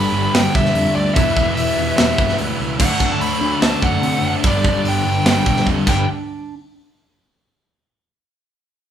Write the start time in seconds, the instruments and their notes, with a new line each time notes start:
Already playing: overdriven electric guitar G2 D3 G3, distorted electric guitar G2 D3 G3 B3 D4, tonewheel organ G3 D4 A4, lead electric guitar B5
0.13 picked electric bass G1, overdriven electric guitar G2 D3 G3
0.34 picked electric bass G1, distorted electric guitar G2 D3, lead electric guitar G5, snare, open hi-hat
0.38 distorted electric guitar G3
0.55 picked electric bass B1, lead electric guitar E5, kick
0.65 snare
0.74 picked electric bass F2, open hi-hat
0.95 picked electric bass D2, lead electric guitar D5
1.13 picked electric bass E1, overdriven electric guitar E2, distorted electric guitar E3 G3, tonewheel organ E4 B4 E5, lead electric guitar E5, kick, open hi-hat
1.18 overdriven electric guitar B2 E3, distorted electric guitar B3 E4
1.37 picked electric bass E1, kick
1.55 picked electric bass E1, lead electric guitar E5, open hi-hat
1.77 picked electric bass E1, overdriven electric guitar E2 B2 E3
1.97 picked electric bass E1, distorted electric guitar E2 B2 E3, lead electric guitar E5, snare, open hi-hat
2.18 picked electric bass G1, kick
2.29 snare
2.38 picked electric bass D2, open hi-hat
2.60 picked electric bass C#2
2.79 picked electric bass D2, distorted electric guitar D3 F#3 A3 D4, overdriven electric guitar D3 A3 D4, tonewheel organ D4 A4, lead electric guitar F#5, kick, crash
3.00 picked electric bass D2, kick
3.12 lead electric guitar A5
3.20 picked electric bass D2, lead electric guitar B5, open hi-hat
3.40 picked electric bass D2, overdriven electric guitar A3 D4
3.44 overdriven electric guitar D3
3.62 picked electric bass D2, distorted electric guitar D3 A3 D4, lead electric guitar A5, snare, open hi-hat
3.82 picked electric bass F#2, lead electric guitar F#5, kick
4.01 picked electric bass C3, open hi-hat
4.21 picked electric bass F#1
4.27 lead electric guitar F#5
4.43 picked electric bass G1, distorted electric guitar G2 D3 G3 B3 D4, overdriven electric guitar G2 D3 G3, tonewheel organ G3 D4, lead electric guitar D5, kick, open hi-hat
4.64 picked electric bass G1, kick
4.84 picked electric bass G1, open hi-hat
4.89 lead electric guitar G5
5.05 picked electric bass G1, overdriven electric guitar G2 D3 G3
5.25 picked electric bass G1, distorted electric guitar G2 D3 G3, lead electric guitar G5, snare, open hi-hat
5.46 picked electric bass B1, kick
5.56 snare
5.67 picked electric bass F2, kick
5.86 picked electric bass G1, overdriven electric guitar G2 D3 G3, distorted electric guitar G3 B3 D4 G4, tonewheel organ G3 D4 A4, lead electric guitar G5, kick, crash